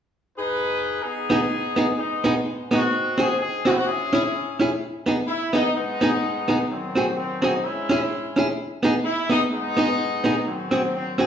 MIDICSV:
0, 0, Header, 1, 3, 480
1, 0, Start_track
1, 0, Key_signature, 5, "minor"
1, 0, Tempo, 470958
1, 1052, Time_signature, 4, 2, 24, 8
1, 11482, End_track
2, 0, Start_track
2, 0, Title_t, "Hollow-body jazz guitar"
2, 0, Program_c, 0, 26
2, 1324, Note_on_c, 0, 59, 87
2, 1332, Note_on_c, 0, 63, 81
2, 1342, Note_on_c, 0, 68, 95
2, 1419, Note_off_c, 0, 59, 0
2, 1423, Note_off_c, 0, 63, 0
2, 1428, Note_off_c, 0, 68, 0
2, 1797, Note_on_c, 0, 59, 77
2, 1807, Note_on_c, 0, 63, 82
2, 1817, Note_on_c, 0, 68, 82
2, 1895, Note_off_c, 0, 59, 0
2, 1900, Note_off_c, 0, 63, 0
2, 1905, Note_off_c, 0, 68, 0
2, 2284, Note_on_c, 0, 59, 87
2, 2294, Note_on_c, 0, 63, 99
2, 2301, Note_on_c, 0, 68, 91
2, 2379, Note_off_c, 0, 59, 0
2, 2384, Note_off_c, 0, 63, 0
2, 2387, Note_off_c, 0, 68, 0
2, 2764, Note_on_c, 0, 59, 79
2, 2773, Note_on_c, 0, 63, 74
2, 2782, Note_on_c, 0, 68, 85
2, 2858, Note_off_c, 0, 59, 0
2, 2863, Note_off_c, 0, 63, 0
2, 2868, Note_off_c, 0, 68, 0
2, 3237, Note_on_c, 0, 60, 77
2, 3251, Note_on_c, 0, 66, 84
2, 3257, Note_on_c, 0, 68, 91
2, 3335, Note_off_c, 0, 60, 0
2, 3342, Note_off_c, 0, 66, 0
2, 3345, Note_off_c, 0, 68, 0
2, 3723, Note_on_c, 0, 60, 84
2, 3735, Note_on_c, 0, 66, 97
2, 3745, Note_on_c, 0, 68, 85
2, 3818, Note_off_c, 0, 60, 0
2, 3824, Note_off_c, 0, 66, 0
2, 3829, Note_off_c, 0, 68, 0
2, 4207, Note_on_c, 0, 61, 82
2, 4214, Note_on_c, 0, 64, 91
2, 4226, Note_on_c, 0, 68, 86
2, 4300, Note_off_c, 0, 61, 0
2, 4304, Note_off_c, 0, 64, 0
2, 4310, Note_off_c, 0, 68, 0
2, 4684, Note_on_c, 0, 61, 68
2, 4695, Note_on_c, 0, 64, 81
2, 4702, Note_on_c, 0, 68, 81
2, 4779, Note_off_c, 0, 61, 0
2, 4784, Note_off_c, 0, 64, 0
2, 4788, Note_off_c, 0, 68, 0
2, 5160, Note_on_c, 0, 59, 74
2, 5171, Note_on_c, 0, 63, 72
2, 5178, Note_on_c, 0, 68, 88
2, 5257, Note_off_c, 0, 59, 0
2, 5263, Note_off_c, 0, 63, 0
2, 5266, Note_off_c, 0, 68, 0
2, 5638, Note_on_c, 0, 59, 77
2, 5650, Note_on_c, 0, 63, 90
2, 5657, Note_on_c, 0, 68, 90
2, 5736, Note_off_c, 0, 59, 0
2, 5742, Note_off_c, 0, 63, 0
2, 5746, Note_off_c, 0, 68, 0
2, 6127, Note_on_c, 0, 59, 82
2, 6137, Note_on_c, 0, 63, 85
2, 6147, Note_on_c, 0, 68, 95
2, 6221, Note_off_c, 0, 59, 0
2, 6226, Note_off_c, 0, 63, 0
2, 6231, Note_off_c, 0, 68, 0
2, 6605, Note_on_c, 0, 59, 69
2, 6612, Note_on_c, 0, 63, 77
2, 6621, Note_on_c, 0, 68, 82
2, 6701, Note_off_c, 0, 59, 0
2, 6704, Note_off_c, 0, 63, 0
2, 6709, Note_off_c, 0, 68, 0
2, 7088, Note_on_c, 0, 60, 69
2, 7099, Note_on_c, 0, 66, 75
2, 7108, Note_on_c, 0, 68, 87
2, 7182, Note_off_c, 0, 60, 0
2, 7187, Note_off_c, 0, 66, 0
2, 7192, Note_off_c, 0, 68, 0
2, 7563, Note_on_c, 0, 60, 81
2, 7575, Note_on_c, 0, 66, 71
2, 7583, Note_on_c, 0, 68, 86
2, 7660, Note_off_c, 0, 60, 0
2, 7666, Note_off_c, 0, 66, 0
2, 7670, Note_off_c, 0, 68, 0
2, 8046, Note_on_c, 0, 61, 87
2, 8058, Note_on_c, 0, 64, 86
2, 8066, Note_on_c, 0, 68, 90
2, 8141, Note_off_c, 0, 61, 0
2, 8147, Note_off_c, 0, 64, 0
2, 8151, Note_off_c, 0, 68, 0
2, 8524, Note_on_c, 0, 61, 77
2, 8536, Note_on_c, 0, 64, 86
2, 8546, Note_on_c, 0, 68, 92
2, 8620, Note_off_c, 0, 61, 0
2, 8626, Note_off_c, 0, 64, 0
2, 8631, Note_off_c, 0, 68, 0
2, 8998, Note_on_c, 0, 59, 80
2, 9010, Note_on_c, 0, 63, 91
2, 9020, Note_on_c, 0, 68, 95
2, 9097, Note_off_c, 0, 59, 0
2, 9103, Note_off_c, 0, 63, 0
2, 9108, Note_off_c, 0, 68, 0
2, 9474, Note_on_c, 0, 59, 82
2, 9484, Note_on_c, 0, 63, 83
2, 9496, Note_on_c, 0, 68, 80
2, 9575, Note_off_c, 0, 59, 0
2, 9580, Note_off_c, 0, 63, 0
2, 9586, Note_off_c, 0, 68, 0
2, 9955, Note_on_c, 0, 59, 83
2, 9965, Note_on_c, 0, 63, 84
2, 9975, Note_on_c, 0, 68, 97
2, 10055, Note_off_c, 0, 59, 0
2, 10060, Note_off_c, 0, 63, 0
2, 10066, Note_off_c, 0, 68, 0
2, 10436, Note_on_c, 0, 59, 77
2, 10445, Note_on_c, 0, 63, 81
2, 10454, Note_on_c, 0, 68, 82
2, 10536, Note_off_c, 0, 59, 0
2, 10540, Note_off_c, 0, 63, 0
2, 10545, Note_off_c, 0, 68, 0
2, 10918, Note_on_c, 0, 60, 74
2, 10926, Note_on_c, 0, 66, 81
2, 10937, Note_on_c, 0, 68, 76
2, 11016, Note_off_c, 0, 60, 0
2, 11020, Note_off_c, 0, 66, 0
2, 11026, Note_off_c, 0, 68, 0
2, 11397, Note_on_c, 0, 60, 72
2, 11407, Note_on_c, 0, 66, 76
2, 11417, Note_on_c, 0, 68, 84
2, 11482, Note_off_c, 0, 60, 0
2, 11482, Note_off_c, 0, 66, 0
2, 11482, Note_off_c, 0, 68, 0
2, 11482, End_track
3, 0, Start_track
3, 0, Title_t, "Horn section"
3, 0, Program_c, 1, 61
3, 378, Note_on_c, 1, 71, 110
3, 381, Note_on_c, 1, 68, 88
3, 385, Note_on_c, 1, 63, 82
3, 1016, Note_off_c, 1, 71, 0
3, 1028, Note_off_c, 1, 68, 0
3, 1040, Note_on_c, 1, 68, 101
3, 1048, Note_off_c, 1, 63, 0
3, 1061, Note_on_c, 1, 59, 70
3, 1061, Note_on_c, 1, 63, 66
3, 1974, Note_off_c, 1, 63, 0
3, 1975, Note_off_c, 1, 59, 0
3, 2005, Note_off_c, 1, 68, 0
3, 2021, Note_on_c, 1, 63, 89
3, 2038, Note_on_c, 1, 56, 61
3, 2039, Note_on_c, 1, 59, 59
3, 2462, Note_off_c, 1, 63, 0
3, 2772, Note_on_c, 1, 60, 75
3, 2773, Note_on_c, 1, 63, 78
3, 2783, Note_on_c, 1, 66, 105
3, 2943, Note_off_c, 1, 56, 0
3, 2944, Note_off_c, 1, 59, 0
3, 3221, Note_off_c, 1, 66, 0
3, 3257, Note_on_c, 1, 68, 100
3, 3446, Note_off_c, 1, 68, 0
3, 3458, Note_on_c, 1, 68, 103
3, 3688, Note_off_c, 1, 60, 0
3, 3688, Note_off_c, 1, 63, 0
3, 3710, Note_off_c, 1, 68, 0
3, 3736, Note_on_c, 1, 66, 95
3, 3778, Note_on_c, 1, 64, 73
3, 3782, Note_off_c, 1, 66, 0
3, 3829, Note_off_c, 1, 64, 0
3, 3831, Note_on_c, 1, 66, 96
3, 3932, Note_off_c, 1, 66, 0
3, 3941, Note_on_c, 1, 68, 106
3, 3947, Note_on_c, 1, 61, 75
3, 3948, Note_on_c, 1, 64, 76
3, 4691, Note_off_c, 1, 68, 0
3, 4859, Note_off_c, 1, 61, 0
3, 4859, Note_off_c, 1, 64, 0
3, 5375, Note_on_c, 1, 64, 95
3, 5629, Note_off_c, 1, 64, 0
3, 5649, Note_on_c, 1, 63, 91
3, 5840, Note_off_c, 1, 63, 0
3, 5861, Note_on_c, 1, 63, 110
3, 5862, Note_on_c, 1, 56, 77
3, 5865, Note_on_c, 1, 59, 85
3, 6777, Note_off_c, 1, 63, 0
3, 6778, Note_off_c, 1, 56, 0
3, 6779, Note_off_c, 1, 59, 0
3, 6823, Note_on_c, 1, 51, 61
3, 6823, Note_on_c, 1, 60, 82
3, 6826, Note_on_c, 1, 54, 59
3, 7285, Note_off_c, 1, 60, 0
3, 7297, Note_on_c, 1, 60, 92
3, 7551, Note_off_c, 1, 60, 0
3, 7567, Note_on_c, 1, 63, 85
3, 7738, Note_off_c, 1, 51, 0
3, 7740, Note_off_c, 1, 54, 0
3, 7774, Note_off_c, 1, 63, 0
3, 7784, Note_on_c, 1, 61, 68
3, 7787, Note_on_c, 1, 56, 72
3, 7790, Note_on_c, 1, 64, 91
3, 8537, Note_off_c, 1, 64, 0
3, 8699, Note_off_c, 1, 61, 0
3, 8700, Note_off_c, 1, 56, 0
3, 9214, Note_on_c, 1, 64, 101
3, 9469, Note_off_c, 1, 64, 0
3, 9496, Note_on_c, 1, 63, 92
3, 9587, Note_off_c, 1, 63, 0
3, 9703, Note_on_c, 1, 63, 112
3, 9704, Note_on_c, 1, 56, 83
3, 9705, Note_on_c, 1, 59, 80
3, 10617, Note_off_c, 1, 56, 0
3, 10617, Note_off_c, 1, 63, 0
3, 10618, Note_off_c, 1, 59, 0
3, 10657, Note_on_c, 1, 60, 88
3, 10659, Note_on_c, 1, 51, 60
3, 10661, Note_on_c, 1, 54, 64
3, 11128, Note_off_c, 1, 60, 0
3, 11141, Note_on_c, 1, 60, 91
3, 11391, Note_off_c, 1, 60, 0
3, 11405, Note_on_c, 1, 63, 88
3, 11482, Note_off_c, 1, 51, 0
3, 11482, Note_off_c, 1, 54, 0
3, 11482, Note_off_c, 1, 63, 0
3, 11482, End_track
0, 0, End_of_file